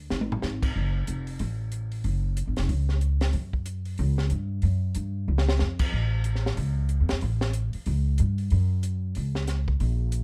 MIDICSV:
0, 0, Header, 1, 4, 480
1, 0, Start_track
1, 0, Tempo, 323450
1, 1114, Time_signature, 4, 2, 24, 8
1, 15192, End_track
2, 0, Start_track
2, 0, Title_t, "Upright bass"
2, 0, Program_c, 0, 32
2, 160, Note_on_c, 0, 32, 76
2, 604, Note_off_c, 0, 32, 0
2, 632, Note_on_c, 0, 32, 73
2, 1080, Note_off_c, 0, 32, 0
2, 1125, Note_on_c, 0, 30, 74
2, 1567, Note_off_c, 0, 30, 0
2, 1602, Note_on_c, 0, 29, 64
2, 2045, Note_off_c, 0, 29, 0
2, 2077, Note_on_c, 0, 33, 84
2, 2989, Note_off_c, 0, 33, 0
2, 3033, Note_on_c, 0, 30, 76
2, 3630, Note_off_c, 0, 30, 0
2, 3671, Note_on_c, 0, 32, 59
2, 3822, Note_off_c, 0, 32, 0
2, 3836, Note_on_c, 0, 29, 66
2, 3979, Note_off_c, 0, 29, 0
2, 3988, Note_on_c, 0, 37, 79
2, 4905, Note_off_c, 0, 37, 0
2, 4943, Note_on_c, 0, 42, 70
2, 5862, Note_off_c, 0, 42, 0
2, 5920, Note_on_c, 0, 37, 91
2, 6365, Note_off_c, 0, 37, 0
2, 6389, Note_on_c, 0, 43, 75
2, 6839, Note_off_c, 0, 43, 0
2, 6868, Note_on_c, 0, 42, 81
2, 7319, Note_off_c, 0, 42, 0
2, 7356, Note_on_c, 0, 43, 67
2, 7803, Note_off_c, 0, 43, 0
2, 7835, Note_on_c, 0, 37, 77
2, 8282, Note_off_c, 0, 37, 0
2, 8322, Note_on_c, 0, 41, 76
2, 8766, Note_off_c, 0, 41, 0
2, 8791, Note_on_c, 0, 33, 73
2, 9705, Note_off_c, 0, 33, 0
2, 9749, Note_on_c, 0, 37, 84
2, 10347, Note_off_c, 0, 37, 0
2, 10393, Note_on_c, 0, 40, 64
2, 10543, Note_off_c, 0, 40, 0
2, 10567, Note_on_c, 0, 41, 63
2, 10711, Note_off_c, 0, 41, 0
2, 10718, Note_on_c, 0, 33, 80
2, 11437, Note_off_c, 0, 33, 0
2, 11672, Note_on_c, 0, 37, 80
2, 12119, Note_off_c, 0, 37, 0
2, 12161, Note_on_c, 0, 43, 79
2, 12604, Note_off_c, 0, 43, 0
2, 12635, Note_on_c, 0, 42, 82
2, 13546, Note_off_c, 0, 42, 0
2, 13601, Note_on_c, 0, 37, 75
2, 14508, Note_off_c, 0, 37, 0
2, 14547, Note_on_c, 0, 34, 77
2, 15192, Note_off_c, 0, 34, 0
2, 15192, End_track
3, 0, Start_track
3, 0, Title_t, "Muted upright bass strokes"
3, 11492, Note_on_c, 9, 29, 41
3, 11641, Note_off_c, 9, 29, 0
3, 15192, End_track
4, 0, Start_track
4, 0, Title_t, "Drums"
4, 155, Note_on_c, 9, 38, 46
4, 303, Note_off_c, 9, 38, 0
4, 314, Note_on_c, 9, 48, 47
4, 463, Note_off_c, 9, 48, 0
4, 475, Note_on_c, 9, 43, 59
4, 624, Note_off_c, 9, 43, 0
4, 629, Note_on_c, 9, 38, 49
4, 778, Note_off_c, 9, 38, 0
4, 928, Note_on_c, 9, 36, 68
4, 932, Note_on_c, 9, 49, 62
4, 1076, Note_off_c, 9, 36, 0
4, 1080, Note_off_c, 9, 49, 0
4, 1593, Note_on_c, 9, 42, 54
4, 1741, Note_off_c, 9, 42, 0
4, 1885, Note_on_c, 9, 46, 43
4, 2034, Note_off_c, 9, 46, 0
4, 2067, Note_on_c, 9, 46, 49
4, 2215, Note_off_c, 9, 46, 0
4, 2548, Note_on_c, 9, 42, 51
4, 2697, Note_off_c, 9, 42, 0
4, 2844, Note_on_c, 9, 46, 38
4, 2993, Note_off_c, 9, 46, 0
4, 3028, Note_on_c, 9, 46, 40
4, 3177, Note_off_c, 9, 46, 0
4, 3514, Note_on_c, 9, 42, 57
4, 3662, Note_off_c, 9, 42, 0
4, 3806, Note_on_c, 9, 46, 39
4, 3812, Note_on_c, 9, 38, 43
4, 3955, Note_off_c, 9, 46, 0
4, 3961, Note_off_c, 9, 38, 0
4, 3993, Note_on_c, 9, 46, 44
4, 4141, Note_off_c, 9, 46, 0
4, 4289, Note_on_c, 9, 38, 28
4, 4437, Note_off_c, 9, 38, 0
4, 4468, Note_on_c, 9, 42, 44
4, 4616, Note_off_c, 9, 42, 0
4, 4762, Note_on_c, 9, 46, 38
4, 4768, Note_on_c, 9, 38, 53
4, 4910, Note_off_c, 9, 46, 0
4, 4916, Note_off_c, 9, 38, 0
4, 4940, Note_on_c, 9, 46, 41
4, 5088, Note_off_c, 9, 46, 0
4, 5244, Note_on_c, 9, 36, 46
4, 5393, Note_off_c, 9, 36, 0
4, 5426, Note_on_c, 9, 42, 56
4, 5574, Note_off_c, 9, 42, 0
4, 5719, Note_on_c, 9, 46, 37
4, 5867, Note_off_c, 9, 46, 0
4, 5902, Note_on_c, 9, 46, 45
4, 6050, Note_off_c, 9, 46, 0
4, 6205, Note_on_c, 9, 38, 40
4, 6354, Note_off_c, 9, 38, 0
4, 6379, Note_on_c, 9, 42, 46
4, 6528, Note_off_c, 9, 42, 0
4, 6855, Note_on_c, 9, 46, 37
4, 7003, Note_off_c, 9, 46, 0
4, 7340, Note_on_c, 9, 42, 55
4, 7488, Note_off_c, 9, 42, 0
4, 7988, Note_on_c, 9, 38, 51
4, 8136, Note_off_c, 9, 38, 0
4, 8141, Note_on_c, 9, 38, 68
4, 8289, Note_off_c, 9, 38, 0
4, 8301, Note_on_c, 9, 38, 46
4, 8449, Note_off_c, 9, 38, 0
4, 8596, Note_on_c, 9, 49, 76
4, 8602, Note_on_c, 9, 36, 77
4, 8744, Note_off_c, 9, 49, 0
4, 8751, Note_off_c, 9, 36, 0
4, 9261, Note_on_c, 9, 42, 59
4, 9409, Note_off_c, 9, 42, 0
4, 9430, Note_on_c, 9, 38, 27
4, 9578, Note_off_c, 9, 38, 0
4, 9591, Note_on_c, 9, 38, 46
4, 9740, Note_off_c, 9, 38, 0
4, 9752, Note_on_c, 9, 46, 49
4, 9900, Note_off_c, 9, 46, 0
4, 10222, Note_on_c, 9, 42, 46
4, 10370, Note_off_c, 9, 42, 0
4, 10518, Note_on_c, 9, 46, 38
4, 10524, Note_on_c, 9, 38, 60
4, 10667, Note_off_c, 9, 46, 0
4, 10672, Note_off_c, 9, 38, 0
4, 10703, Note_on_c, 9, 46, 42
4, 10851, Note_off_c, 9, 46, 0
4, 11000, Note_on_c, 9, 38, 56
4, 11148, Note_off_c, 9, 38, 0
4, 11181, Note_on_c, 9, 42, 52
4, 11329, Note_off_c, 9, 42, 0
4, 11473, Note_on_c, 9, 46, 39
4, 11621, Note_off_c, 9, 46, 0
4, 11661, Note_on_c, 9, 46, 50
4, 11810, Note_off_c, 9, 46, 0
4, 12139, Note_on_c, 9, 42, 52
4, 12287, Note_off_c, 9, 42, 0
4, 12438, Note_on_c, 9, 46, 37
4, 12586, Note_off_c, 9, 46, 0
4, 12620, Note_on_c, 9, 46, 42
4, 12769, Note_off_c, 9, 46, 0
4, 13103, Note_on_c, 9, 42, 56
4, 13252, Note_off_c, 9, 42, 0
4, 13579, Note_on_c, 9, 46, 51
4, 13727, Note_off_c, 9, 46, 0
4, 13879, Note_on_c, 9, 38, 41
4, 14027, Note_off_c, 9, 38, 0
4, 14059, Note_on_c, 9, 42, 51
4, 14065, Note_on_c, 9, 38, 33
4, 14208, Note_off_c, 9, 42, 0
4, 14214, Note_off_c, 9, 38, 0
4, 14362, Note_on_c, 9, 36, 61
4, 14511, Note_off_c, 9, 36, 0
4, 14545, Note_on_c, 9, 46, 42
4, 14693, Note_off_c, 9, 46, 0
4, 15017, Note_on_c, 9, 42, 57
4, 15166, Note_off_c, 9, 42, 0
4, 15192, End_track
0, 0, End_of_file